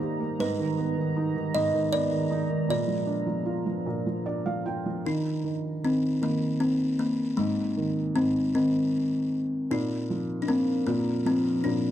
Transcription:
0.00 0.42 D#3 medium
0.00 0.38 G3 medium
0.00 0.20 A#3 medium
0.00 0.36 D#4 medium
0.00 0.42 D#4 soft
0.00 0.42 G4 medium
0.00 5.01 A#5 medium
0.20 0.39 A#3 soft
0.39 1.53 G#2 medium
0.39 2.67 G#3 medium
0.39 2.67 B3 medium
0.39 1.51 B4 medium
0.59 0.96 D#3 medium
0.78 1.91 B3 medium
0.97 1.35 D#3 soft
1.17 2.30 D#4 medium
1.36 1.72 D#3 soft
1.54 2.66 G#2 medium
1.54 1.94 D#5 medium
1.74 2.10 D#3 soft
1.92 2.67 B3 soft
1.92 2.69 D5 medium
2.12 2.48 D#3 medium
2.31 2.68 D#4 medium
2.50 2.68 D#3 soft
2.69 3.85 A#2 medium
2.69 5.02 F3 medium
2.69 5.02 D4 medium
2.69 4.62 D5 medium
2.88 3.25 F3 medium
3.07 4.25 D4 soft
3.26 3.65 F3 soft
3.46 4.64 F4 soft
3.66 4.05 F3 soft
3.86 5.01 A#2 medium
4.06 4.45 F3 soft
4.26 5.02 D4 soft
4.26 4.44 D5 medium
4.46 4.84 F3 soft
4.46 4.64 F5 medium
4.66 5.04 F4 soft
4.66 5.02 G5 medium
4.86 5.04 F3 soft
5.05 5.43 D#3 medium
5.05 5.86 D#4 medium
5.44 5.82 D#3 soft
5.83 6.20 D#3 soft
5.83 6.23 C4 medium
6.21 7.34 D#3 medium
6.21 6.62 A#3 medium
6.60 7.00 C4 medium
6.99 7.39 A#3 medium
7.37 8.15 G#2 medium
7.37 8.17 G#3 medium
7.77 8.53 D#3 soft
8.15 9.67 G#2 soft
8.15 8.33 C4 medium
8.54 9.67 D#3 medium
8.54 9.38 C4 medium
9.71 10.84 A#2 medium
9.71 11.91 F3 medium
9.71 10.86 D#4 medium
9.71 10.44 D#4 medium
9.71 11.91 A#4 medium
10.10 10.85 F3 soft
10.42 10.49 D4 medium
10.48 10.86 A#3 soft
10.48 10.84 C4 medium
10.87 11.63 A#2 medium
10.87 11.27 A#3 medium
10.87 11.91 D4 medium
11.25 11.91 F3 soft
11.25 11.66 C4 medium
11.64 11.91 A#2 soft
11.64 11.91 D4 medium

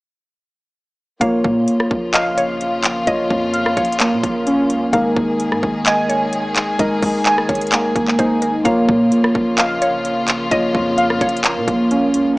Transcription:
1.20 1.44 A#1 loud
1.20 4.90 C#3 medium
1.20 4.90 F3 medium
1.20 3.03 A#3 medium
1.20 3.99 A#3 medium
1.20 12.33 A#3 medium
1.20 3.04 F4 medium
1.20 4.90 F4 loud
1.20 3.04 C#5 medium
1.20 2.10 F5 loud
1.20 kick loud
1.20 closed hi-hat medium
1.44 1.67 A#2 loud
1.44 kick medium
1.68 closed hi-hat medium
1.80 cross-stick medium
1.91 3.03 A#1 loud
1.91 kick medium
2.14 2.36 D#5 medium
2.14 3.52 F5 loud
2.14 clap loud
2.14 closed hi-hat medium
2.38 3.03 C#5 medium
2.38 closed hi-hat medium
2.61 closed hi-hat medium
2.84 clap loud
2.84 closed hi-hat medium
3.06 3.30 A#1 loud
3.06 4.89 A#3 medium
3.06 4.90 F4 medium
3.06 4.90 C#5 medium
3.06 3.73 D#5 loud
3.06 kick loud
3.06 closed hi-hat medium
3.30 3.75 F2 loud
3.30 kick loud
3.53 4.93 F5 medium
3.53 closed hi-hat medium
3.66 cross-stick medium
3.77 4.14 A#1 loud
3.77 4.43 C#5 medium
3.77 kick medium
3.77 closed hi-hat medium
3.85 closed hi-hat medium
3.92 closed hi-hat medium
4.00 4.92 A#3 medium
4.00 clap loud
4.00 closed hi-hat medium
4.13 4.23 A#2 loud
4.23 4.71 A#1 loud
4.23 kick loud
4.23 closed hi-hat medium
4.47 4.93 C#4 medium
4.47 closed hi-hat medium
4.70 4.84 C#2 loud
4.70 closed hi-hat medium
4.82 4.93 A#1 loud
4.92 5.16 G#1 loud
4.92 8.62 D#3 medium
4.92 6.75 G#3 medium
4.92 8.62 G#3 medium
4.92 7.71 A#3 medium
4.92 6.76 D#4 medium
4.92 8.62 G#4 loud
4.92 6.76 A#4 medium
4.92 5.82 F5 loud
4.92 kick loud
4.92 closed hi-hat medium
5.16 5.54 G#1 loud
5.16 kick loud
5.40 closed hi-hat medium
5.52 5.62 G#2 loud
5.52 cross-stick medium
5.63 6.75 G#1 loud
5.63 kick medium
5.86 6.09 D#5 medium
5.86 7.24 G#5 loud
5.86 clap loud
5.86 closed hi-hat medium
6.09 6.75 C#5 medium
6.09 closed hi-hat medium
6.33 closed hi-hat medium
6.56 clap loud
6.56 closed hi-hat medium
6.78 7.02 G#1 loud
6.78 8.61 G#3 medium
6.78 8.62 D#4 medium
6.78 8.62 A#4 medium
6.78 7.45 D#5 loud
6.78 kick loud
6.78 closed hi-hat medium
7.03 7.25 G#1 loud
7.03 kick loud
7.03 open hi-hat medium
7.26 8.65 G#5 medium
7.26 clap loud
7.26 closed hi-hat medium
7.38 cross-stick medium
7.49 7.94 G#1 loud
7.49 8.15 C#5 medium
7.49 kick medium
7.49 closed hi-hat medium
7.55 closed hi-hat medium
7.61 closed hi-hat medium
7.67 closed hi-hat medium
7.72 8.64 A#3 medium
7.72 clap loud
7.72 closed hi-hat medium
7.96 8.18 G#1 loud
7.96 kick loud
7.96 closed hi-hat medium
8.08 clap medium
8.19 8.63 G#1 loud
8.19 8.65 D#4 medium
8.19 8.41 C5 medium
8.19 kick loud
8.19 closed hi-hat medium
8.42 8.64 A#4 medium
8.42 closed hi-hat medium
8.64 8.88 A#1 loud
8.64 12.34 C#3 medium
8.64 12.34 F3 medium
8.64 10.47 A#3 medium
8.64 11.43 A#3 loud
8.64 10.48 F4 medium
8.64 12.34 F4 loud
8.64 10.48 C#5 medium
8.64 9.54 F5 loud
8.64 kick loud
8.64 closed hi-hat medium
8.89 9.11 A#2 loud
8.89 kick loud
9.12 closed hi-hat medium
9.24 cross-stick medium
9.35 10.47 A#1 loud
9.35 kick medium
9.58 9.80 D#5 medium
9.58 10.96 F5 loud
9.58 clap loud
9.58 closed hi-hat medium
9.82 10.47 C#5 medium
9.82 closed hi-hat medium
10.05 closed hi-hat medium
10.28 clap loud
10.28 closed hi-hat medium
10.50 10.74 A#1 loud
10.50 12.33 A#3 medium
10.50 12.34 F4 medium
10.50 12.34 C#5 medium
10.50 11.17 D#5 loud
10.50 kick loud
10.50 closed hi-hat medium
10.75 11.19 F2 loud
10.75 kick medium
10.97 12.37 F5 medium
10.97 closed hi-hat medium
11.10 cross-stick medium
11.21 11.58 A#1 loud
11.21 11.87 C#5 medium
11.21 kick loud
11.21 closed hi-hat medium
11.29 closed hi-hat medium
11.37 closed hi-hat medium
11.44 12.36 A#3 medium
11.44 clap loud
11.44 closed hi-hat medium
11.57 11.67 A#2 loud
11.68 12.16 A#1 loud
11.68 kick loud
11.68 closed hi-hat medium
11.91 12.38 C#4 medium
11.91 closed hi-hat medium
12.14 12.28 C#2 loud
12.14 closed hi-hat medium
12.26 12.37 A#1 loud

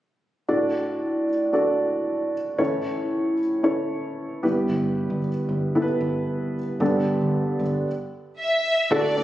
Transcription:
0.48 1.24 A2 medium
0.48 1.28 D4 medium
0.48 1.29 F#4 medium
0.48 1.29 A4 medium
0.48 1.29 D5 medium
1.53 2.33 D4 medium
1.53 2.34 F#4 medium
1.53 2.34 A4 medium
1.53 2.34 D5 medium
2.58 3.34 A2 medium
2.58 3.34 E3 medium
2.58 3.39 C#4 medium
2.58 3.39 E4 medium
2.58 3.39 A4 medium
2.58 3.39 C#5 medium
3.63 4.43 C#4 medium
3.63 4.42 E4 medium
3.63 4.43 A4 medium
3.63 4.43 C#5 medium
4.43 5.18 G2 soft
4.43 5.18 G3 medium
4.43 5.28 B3 medium
4.43 5.28 E4 medium
4.43 5.28 G4 medium
4.43 5.28 B4 medium
4.69 5.08 G1 medium
5.10 5.46 G1 medium
5.49 5.98 G1 medium
5.75 6.55 B3 medium
5.75 6.55 E4 medium
5.75 6.55 G4 medium
5.75 5.83 A4 medium
5.82 6.59 B4 medium
6.01 6.76 G1 medium
6.80 7.19 G1 medium
6.80 7.56 G2 medium
6.80 7.56 D3 medium
6.80 7.60 B3 medium
6.80 7.60 D4 medium
6.80 7.60 G4 medium
6.80 7.61 A4 medium
7.21 7.57 G1 medium
7.59 7.84 G1 medium
8.40 8.88 E5 medium
8.91 9.24 D2 medium
8.91 9.24 A2 soft
8.91 9.12 A3 medium
8.91 9.12 D4 medium
8.91 9.12 F#4 medium
8.91 9.12 A4 loud
8.91 9.24 D5 medium
9.16 9.24 A3 medium
9.16 9.24 D4 medium
9.16 9.24 F#4 medium
9.16 9.24 A4 medium

